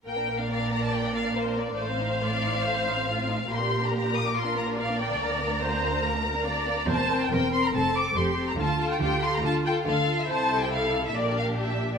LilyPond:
<<
  \new Staff \with { instrumentName = "Violin section" } { \time 4/4 \key bes \major \tempo 4 = 141 g''8. f''16 f''8 bes''16 a''16 g''8 f''8 c''8 d''8 | f''1 | c'''8. bes''16 bes''8 ees'''16 d'''16 c'''8 bes''8 f''8 g''8 | bes''1 |
\key d \minor a''8. g''16 g''8 c'''16 bes''16 a''8 d'''8 c'''8. bes''16 | a''8. g''16 g''8 c'''16 bes''16 a''8 g''8 f''8. e''16 | a''8. g''16 f''8. e''16 d''8 f''8 e''8. d''16 | }
  \new Staff \with { instrumentName = "Viola section" } { \time 4/4 \key bes \major bes'4 d''2 bes'4 | c''4 d''4 c''4 f'4 | g'2 f'4 d''4~ | d''4 c''4 bes'4 d''4 |
\key d \minor c''4 bes'4 a'4 g'4 | f'4 g'4 f'4 a'4 | c''4 a'4 bes'4 g'4 | }
  \new Staff \with { instrumentName = "Violin section" } { \time 4/4 \key bes \major << { bes'1 | c''1 | bes'1~ | bes'1 |
\key d \minor bes'8 bes'8 bes'8 bes'8 a'8 a'8 a'8 a'8 | a'8 a'8 a'8 a'8 a'8 a'8 a'8 a'8 | a'2 g'2 | } \\ { bes16 d'16 bes16 d'16 bes16 d'16 bes16 d'16 bes16 d'16 bes16 d'16 bes16 d'16 bes16 d'16 | a16 c'16 ees'16 c'16 a16 c'16 ees'16 c'16 a16 c'16 ees'16 c'16 a16 c'16 ees'16 c'16 | bes16 d'16 bes16 d'16 bes16 d'16 bes16 d'16 bes16 d'16 bes16 d'16 bes16 d'16 bes16 d'16 | bes16 d'16 bes16 d'16 bes16 d'16 bes16 d'16 bes16 d'16 bes16 d'16 bes16 d'16 bes16 d'16 |
c'8 c'8 c'8 c'8 c'8 c'8 c'8 c'8 | f'8 f'8 f'8 f'8 f'8 f'8 f'8 f'8 | e'2 d'2 | } >> }
  \new Staff \with { instrumentName = "Cello section" } { \clef bass \time 4/4 \key bes \major bes,1 | a,1 | bes,1 | d,1 |
\key d \minor e,4 e,4 f,4 f,4 | d4 d4 d4 d4 | c2 bes,2 | }
  \new Staff \with { instrumentName = "Double bass section" } { \clef bass \time 4/4 \key bes \major bes,,1 | a,,1 | bes,,1 | d,1 |
\key d \minor e,,4 e,,4 f,,4 f,,4 | d,4 d,4 d,4 d,4 | c,2 bes,,2 | }
>>